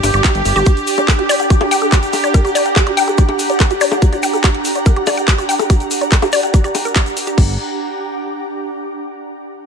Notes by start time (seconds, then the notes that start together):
Already playing: D4 G4 G5 D6
0.03 G1 G5, open hi-hat, high bongo, shaker
0.13 G1 G4, closed hi-hat, shaker
0.22 G4 F#5, kick, clap, closed hi-hat, shaker
0.35 G1, closed hi-hat, shaker
0.45 G1, open hi-hat, shaker
0.56 G1 G4, closed hi-hat, shaker
0.66 G4, kick, closed hi-hat, shaker
0.77 closed hi-hat, shaker
0.86 A#5, open hi-hat, shaker
0.97 D5, closed hi-hat, high bongo, shaker
1.08 A#4, kick, clap, closed hi-hat, shaker
1.19 G4, closed hi-hat
1.29 D5, open hi-hat, shaker
1.40 G5, closed hi-hat, shaker
1.50 G4, kick, closed hi-hat, shaker
1.61 G4, closed hi-hat, high bongo
1.71 G5, open hi-hat, shaker
1.82 A4, closed hi-hat, shaker
1.92 G4, kick, clap, closed hi-hat, shaker
2.03 closed hi-hat, shaker
2.13 open hi-hat, high bongo, shaker
2.24 D5, closed hi-hat, shaker
2.34 A#4, kick, closed hi-hat, shaker
2.45 G4, closed hi-hat, shaker
2.55 D5, open hi-hat, shaker
2.65 G5, closed hi-hat, shaker
2.76 G4, kick, clap, closed hi-hat, high bongo, shaker
2.87 G4, closed hi-hat
2.97 G5, open hi-hat, shaker
3.08 A4, closed hi-hat, shaker
3.18 G4, kick, closed hi-hat, shaker
3.29 closed hi-hat, high bongo
3.39 open hi-hat, shaker
3.50 D5, closed hi-hat, shaker
3.60 A#4, kick, clap, closed hi-hat, shaker
3.70 G4, closed hi-hat, shaker
3.81 D5, open hi-hat, shaker
3.92 G5, closed hi-hat, high bongo, shaker
4.02 G4, kick, closed hi-hat, shaker
4.13 G4, closed hi-hat, shaker
4.23 G5, open hi-hat, shaker
4.33 A4, closed hi-hat, shaker
4.44 G4, kick, clap, closed hi-hat, high bongo, shaker
4.54 closed hi-hat
4.64 open hi-hat, shaker
4.75 D5, closed hi-hat, shaker
4.86 A#4, kick, closed hi-hat, shaker
4.96 G4, closed hi-hat
5.06 D5, open hi-hat, high bongo, shaker
5.17 G5, closed hi-hat, shaker
5.28 G4, kick, clap, closed hi-hat, shaker
5.38 G4, closed hi-hat, shaker
5.49 G5, open hi-hat, shaker
5.59 A4, closed hi-hat, high bongo, shaker
5.70 G4, kick, closed hi-hat, shaker
5.80 closed hi-hat, shaker
5.91 open hi-hat, shaker
6.01 D5, closed hi-hat, shaker
6.12 A#4, kick, clap, closed hi-hat, shaker
6.22 G4, closed hi-hat, high bongo, shaker
6.32 D5, open hi-hat, shaker
6.43 G5, closed hi-hat, shaker
6.54 G4, kick, closed hi-hat, shaker
6.64 G4, closed hi-hat, shaker
6.75 G5, open hi-hat, high bongo, shaker
6.85 A#4, closed hi-hat, shaker
6.95 G4, kick, clap, closed hi-hat, shaker
7.06 closed hi-hat, shaker
7.17 open hi-hat, shaker
7.26 G4, closed hi-hat, shaker
7.38 G1 D4 G4, kick, crash
7.44 G4
7.50 G5
7.57 D6